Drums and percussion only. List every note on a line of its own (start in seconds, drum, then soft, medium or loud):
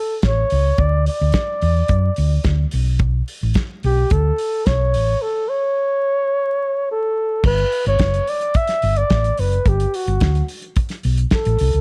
0.22 kick medium
0.22 snare loud
0.22 closed hi-hat soft
0.50 open hi-hat medium
0.78 kick loud
0.78 closed hi-hat medium
1.06 open hi-hat medium
1.32 kick loud
1.32 snare loud
1.32 closed hi-hat medium
1.62 open hi-hat medium
1.88 kick loud
1.88 closed hi-hat medium
2.16 open hi-hat medium
2.44 kick loud
2.44 snare loud
2.44 closed hi-hat soft
2.71 open hi-hat medium
2.99 kick loud
2.99 closed hi-hat medium
3.28 open hi-hat medium
3.54 kick loud
3.54 snare loud
3.54 closed hi-hat medium
3.83 open hi-hat medium
4.10 kick loud
4.10 closed hi-hat medium
4.38 open hi-hat medium
4.66 kick loud
4.66 snare loud
4.66 closed hi-hat medium
4.94 open hi-hat medium
7.44 kick loud
7.44 crash loud
7.58 closed hi-hat medium
7.72 open hi-hat medium
7.86 closed hi-hat soft
7.99 kick loud
7.99 snare loud
7.99 closed hi-hat medium
8.14 closed hi-hat soft
8.27 open hi-hat medium
8.41 closed hi-hat soft
8.54 kick loud
8.54 closed hi-hat medium
8.67 snare soft
8.67 closed hi-hat medium
8.82 open hi-hat medium
8.96 closed hi-hat medium
9.10 kick medium
9.10 snare loud
9.10 closed hi-hat soft
9.24 closed hi-hat soft
9.37 open hi-hat medium
9.52 closed hi-hat soft
9.65 kick loud
9.65 closed hi-hat medium
9.80 closed hi-hat medium
9.94 open hi-hat medium
10.07 closed hi-hat soft
10.20 kick loud
10.20 snare loud
10.20 closed hi-hat medium
10.35 closed hi-hat soft
10.48 open hi-hat medium
10.62 closed hi-hat soft
10.76 kick loud
10.76 closed hi-hat medium
10.89 snare soft
10.89 closed hi-hat soft
11.03 open hi-hat medium
11.18 closed hi-hat soft
11.31 kick medium
11.31 snare loud
11.31 closed hi-hat soft
11.45 closed hi-hat medium
11.59 open hi-hat medium
11.73 closed hi-hat soft